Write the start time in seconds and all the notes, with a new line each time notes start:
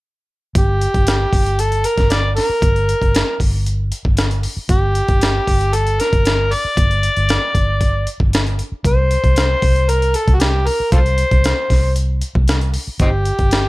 0.55 G1 G4, kick, closed hi-hat
0.81 closed hi-hat
0.94 G1, kick, closed hi-hat
1.07 snare, closed hi-hat
1.33 G1, kick, open hi-hat
1.46 closed hi-hat
1.59 A4, closed hi-hat
1.72 closed hi-hat
1.84 A#4, closed hi-hat
1.98 G1, kick, snare, closed hi-hat
2.10 D5, snare, closed hi-hat
2.37 A#4, snare, open hi-hat
2.49 muted fingered electric bass stroke
2.62 G1, kick, closed hi-hat
2.76 closed hi-hat
2.89 closed hi-hat
3.02 G1, kick, closed hi-hat
3.15 snare, closed hi-hat
3.40 G1, kick, open hi-hat
3.66 closed hi-hat
3.92 closed hi-hat
4.05 G1, kick
4.17 snare, closed hi-hat
4.31 closed hi-hat
4.43 open hi-hat
4.57 muted fingered electric bass stroke
4.69 G1 G4, kick, closed hi-hat
4.95 closed hi-hat
5.08 G1, kick, closed hi-hat
5.21 snare, closed hi-hat
5.47 G1, kick, open hi-hat
5.61 closed hi-hat
5.73 A4, closed hi-hat
5.87 closed hi-hat
6.00 A#4, snare, closed hi-hat
6.13 G1, kick, closed hi-hat
6.25 snare, closed hi-hat
6.52 D5, open hi-hat
6.65 muted fingered electric bass stroke
6.77 G1, kick, closed hi-hat
6.91 closed hi-hat
7.03 closed hi-hat
7.16 G1, closed hi-hat
7.29 snare, closed hi-hat
7.55 G1, kick, closed hi-hat
7.81 kick, closed hi-hat
8.07 closed hi-hat
8.20 G1, kick
8.33 snare, closed hi-hat
8.47 closed hi-hat
8.59 closed hi-hat
8.72 muted fingered electric bass stroke
8.85 C2 C5, kick, closed hi-hat
9.11 closed hi-hat
9.24 C2, kick, closed hi-hat
9.36 snare, closed hi-hat
9.62 C2, kick, open hi-hat
9.76 closed hi-hat
9.89 A#4, closed hi-hat
10.02 closed hi-hat
10.14 A4, closed hi-hat
10.28 C2, kick, closed hi-hat
10.34 F#4
10.40 G4, snare, closed hi-hat
10.67 A#4, open hi-hat
10.80 muted fingered electric bass stroke
10.92 C2 F4 A4 C5, kick, closed hi-hat
11.06 closed hi-hat
11.18 closed hi-hat
11.31 C2, kick, closed hi-hat
11.44 snare, closed hi-hat
11.70 C2, kick, snare, open hi-hat
11.96 closed hi-hat
12.21 closed hi-hat
12.35 C2, kick
12.48 snare, closed hi-hat
12.61 closed hi-hat
12.74 open hi-hat
12.87 muted fingered electric bass stroke
13.00 G1 C4 D#4 G4, kick, closed hi-hat
13.25 closed hi-hat
13.39 G1, kick, closed hi-hat
13.51 snare, closed hi-hat